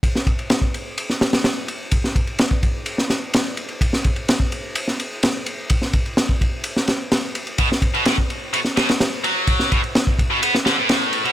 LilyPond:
<<
  \new Staff \with { instrumentName = "Distorted electric guitar" } { \clef bass \time 4/4 \key b \minor \tempo 4 = 127 r1 | r1 | r1 | r1 |
b,16 r8 b,16 a,16 r8. b,16 r16 b,16 r8. fis8~ | fis8 b,16 r4 b,16 b16 r16 d16 a,4 b,16 | }
  \new DrumStaff \with { instrumentName = "Drums" } \drummode { \time 4/4 <bd cymr>16 sn16 <bd cymr>16 cymr16 <cymr sn>16 bd16 cymr8 cymr16 sn16 <cymr sn>16 <cymr sn>16 <cymr sn>8 cymr8 | <bd cymr>16 sn16 <bd cymr>16 cymr16 <cymr sn>16 bd16 <bd cymr>8 cymr16 sn16 <cymr sn>8 <cymr sn>8 cymr16 cymr16 | <bd cymr>16 sn16 <bd cymr>16 cymr16 <cymr sn>16 bd16 cymr8 cymr16 sn16 cymr8 <cymr sn>8 cymr8 | <bd cymr>16 sn16 <bd cymr>16 cymr16 <cymr sn>16 bd16 <bd cymr>8 cymr16 sn16 <cymr sn>8 <cymr sn>8 cymr16 cymr16 |
<bd cymr>16 sn16 <bd cymr>16 cymr16 <cymr sn>16 bd16 cymr8 cymr16 sn16 <cymr sn>16 <cymr sn>16 <cymr sn>8 cymr8 | <bd cymr>16 sn16 <bd cymr>16 cymr16 <cymr sn>16 bd16 <bd cymr>8 cymr16 sn16 <cymr sn>8 <cymr sn>8 cymr16 cymr16 | }
>>